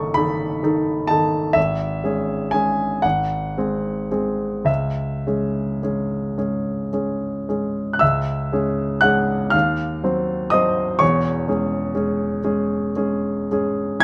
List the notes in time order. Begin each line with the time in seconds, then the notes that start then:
Already playing: F#1 D#3 D#4 A4 C#6 D#6
0.14 D#3 D#4 A4 B5
0.63 D#3 D#4 A4
1.07 D#3 D#4 A4 A5
1.53 G#1 E5
2.04 G#3 C#4 G#4
2.51 G#3 C#4 G#4 G#5
3.02 G#1 F#5
3.57 G#3 C4 G#4
4.11 G#3 C4 G#4
4.65 C#2 E5
5.27 G#3 C#4 G#4
5.83 G#3 C#4 G#4
6.38 G#3 C#4 G#4
6.93 G#3 C#4 G#4
7.49 G#3 C#4 G#4
7.93 F#6
7.99 C#2 E5 E6
8.52 G#3 C#4 G#4
9.01 G#3 C#4 G#4 F#5 F#6
9.50 D#2 F5 F6
10.04 F#3 C4 C5
10.50 F#3 C4 C5 D#5 D#6
10.99 E1 E2 C#5 C#6
11.48 G#3 C#4 G#4
11.95 G#3 C#4 G#4
12.44 G#3 C#4 G#4
12.96 G#3 C#4 G#4
13.51 G#3 C#4 G#4
14.00 E2 G#6